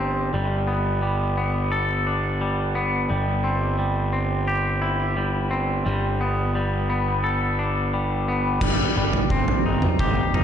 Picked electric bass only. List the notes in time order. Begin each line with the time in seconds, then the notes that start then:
Already playing: G1
0.34 G1
3.10 G1
5.86 G1
8.61 G1
8.96 G1
9.30 G1
9.65 G1
10.00 G1
10.34 G1